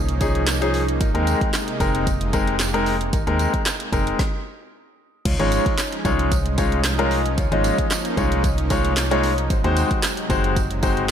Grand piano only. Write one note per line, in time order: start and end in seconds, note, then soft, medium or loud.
0.21 0.41 F3 medium
0.21 0.41 C#4 medium
0.21 0.41 D#4 medium
0.21 0.41 G#4 loud
0.61 0.81 F3 medium
0.61 0.81 C#4 medium
0.61 0.81 D#4 medium
0.61 0.81 G#4 loud
1.00 1.08 D#4 medium
1.00 1.08 A#4 medium
1.14 1.47 G#3 medium
1.14 1.47 C4 medium
1.14 1.48 D#4 medium
1.14 1.48 A#4 loud
1.80 2.07 G#3 medium
1.80 2.07 C4 medium
1.80 2.07 D#4 medium
1.80 2.07 A#4 loud
2.33 2.54 G#3 medium
2.33 2.54 C4 medium
2.33 2.54 D#4 medium
2.33 2.54 A#4 loud
2.74 2.93 G#3 medium
2.74 2.94 C4 medium
2.74 2.94 D#4 medium
2.74 2.94 A#4 loud
3.13 3.20 D#4 medium
3.13 3.20 A#4 medium
3.27 3.60 G#3 medium
3.27 3.60 C4 medium
3.27 3.60 D#4 medium
3.27 3.60 A#4 medium
3.92 4.19 G#3 medium
3.92 4.19 C4 medium
3.92 4.19 D#4 medium
3.92 4.19 A#4 medium
5.25 5.32 F4 medium
5.25 5.33 C#5 medium
5.39 5.72 G#3 medium
5.39 5.72 C#4 medium
5.39 5.72 D#4 medium
5.39 5.72 F4 medium
5.39 5.72 C#5 loud
6.05 6.32 G#3 medium
6.05 6.32 C#4 medium
6.05 6.32 D#4 medium
6.05 6.32 F4 medium
6.05 6.32 C#5 loud
6.58 6.78 G#3 medium
6.58 6.78 C#4 medium
6.58 6.79 D#4 medium
6.58 6.79 F4 medium
6.58 6.79 C#5 medium
6.99 7.18 G#3 medium
6.99 7.18 C#4 medium
6.99 7.18 D#4 medium
6.99 7.18 F4 medium
6.99 7.18 A#4 medium
7.37 7.45 F4 medium
7.37 7.45 C#5 medium
7.52 7.85 G#3 medium
7.52 7.85 C#4 medium
7.52 7.85 D#4 medium
7.52 7.85 F4 medium
7.52 7.85 D#5 loud
8.17 8.44 G#3 medium
8.17 8.44 C#4 medium
8.17 8.44 D#4 medium
8.17 8.44 F4 medium
8.17 8.44 C#5 loud
8.70 8.91 G#3 medium
8.70 8.91 C#4 medium
8.70 8.91 D#4 medium
8.70 8.91 F4 medium
8.70 8.91 C#5 loud
9.11 9.31 G#3 medium
9.11 9.31 C#4 medium
9.11 9.31 D#4 medium
9.11 9.31 F4 medium
9.11 9.31 C#5 loud
9.50 9.57 F#4 medium
9.50 9.57 C5 medium
9.64 9.97 G#3 medium
9.64 9.97 C4 medium
9.64 9.97 D#4 medium
9.64 9.97 F#4 medium
9.64 9.97 C5 loud
10.30 10.56 G#3 medium
10.30 10.56 C4 medium
10.30 10.56 D#4 medium
10.30 10.57 F#4 medium
10.30 10.57 C5 loud
10.83 11.03 G#3 medium
10.83 11.03 C4 medium
10.83 11.03 D#4 medium
10.83 11.03 F#4 medium
10.83 11.03 C5 loud